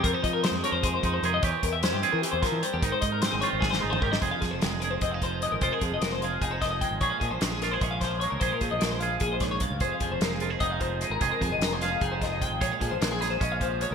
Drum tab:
HH |x-x-x-x-x-x-x-|x-x-x-x-x-x-x-|x-x-x-x-------|x-x-x-x-x-x-x-|
SD |----o---------|----o-----o---|----o---oo---o|--o-o---------|
T2 |--------------|--------------|-----------o--|--------------|
BD |o-o-----o-o---|o-o-------o---|o-o-----o---o-|o-o-----o-o---|

HH |x-x-x-x-x-x-x-|x-x-x-x-x-x-x-|x-x-x-x-x-x-x-|x-x-x-x-x-x-x-|
SD |----o-----o---|----o-o---o---|----o-----o---|----o---------|
T2 |--------------|--------------|--------------|--------------|
BD |o-o-----o-o-o-|o-o-----o-o---|o-o-----o-o-o-|o-o-----o-o---|

HH |x-x-x-x-x-x-x-|x-x-x-x-x-x-x-|
SD |----o-o---o---|----o-o-------|
T2 |--------------|--------------|
BD |o-o-----o-o-o-|o-o-----o-o---|